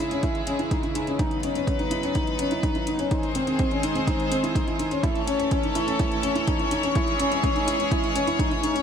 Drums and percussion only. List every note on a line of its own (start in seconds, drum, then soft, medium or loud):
0.11 closed hi-hat soft
0.23 kick medium
0.23 closed hi-hat soft
0.35 closed hi-hat soft
0.47 closed hi-hat medium
0.59 closed hi-hat soft
0.71 kick medium
0.71 closed hi-hat soft
0.83 closed hi-hat soft
0.95 closed hi-hat medium
1.07 closed hi-hat soft
1.19 kick loud
1.19 closed hi-hat soft
1.31 closed hi-hat soft
1.43 closed hi-hat medium
1.55 closed hi-hat soft
1.67 kick loud
1.67 closed hi-hat soft
1.79 closed hi-hat soft
1.91 closed hi-hat medium
2.03 closed hi-hat soft
2.15 kick medium
2.15 closed hi-hat soft
2.27 closed hi-hat soft
2.39 closed hi-hat medium
2.51 closed hi-hat soft
2.63 kick loud
2.63 closed hi-hat soft
2.75 closed hi-hat soft
2.87 closed hi-hat medium
2.99 closed hi-hat soft
3.11 kick loud
3.11 closed hi-hat soft
3.23 closed hi-hat soft
3.35 closed hi-hat medium
3.47 closed hi-hat soft
3.59 kick loud
3.59 closed hi-hat soft
3.71 closed hi-hat soft
3.83 closed hi-hat medium
3.96 closed hi-hat soft
4.07 kick loud
4.07 closed hi-hat soft
4.20 closed hi-hat soft
4.32 closed hi-hat medium
4.44 closed hi-hat soft
4.55 kick loud
4.55 closed hi-hat soft
4.68 closed hi-hat soft
4.79 closed hi-hat medium
4.91 closed hi-hat soft
5.03 kick loud
5.03 closed hi-hat soft
5.15 closed hi-hat soft
5.27 closed hi-hat medium
5.40 closed hi-hat soft
5.51 kick loud
5.51 closed hi-hat soft
5.63 closed hi-hat soft
5.75 closed hi-hat medium
5.88 closed hi-hat soft
5.99 kick loud
5.99 closed hi-hat soft
6.12 closed hi-hat soft
6.23 closed hi-hat medium
6.36 closed hi-hat soft
6.47 kick loud
6.47 closed hi-hat soft
6.59 closed hi-hat soft
6.71 closed hi-hat medium
6.83 closed hi-hat soft
6.95 kick loud
6.95 closed hi-hat soft
7.08 closed hi-hat soft
7.20 closed hi-hat medium
7.32 closed hi-hat soft
7.43 kick loud
7.43 closed hi-hat soft
7.56 closed hi-hat soft
7.68 closed hi-hat medium
7.80 closed hi-hat soft
7.91 kick medium
7.91 closed hi-hat soft
8.04 closed hi-hat soft
8.16 closed hi-hat medium
8.27 closed hi-hat soft
8.39 kick loud
8.39 closed hi-hat soft
8.51 closed hi-hat soft
8.63 closed hi-hat medium
8.76 closed hi-hat soft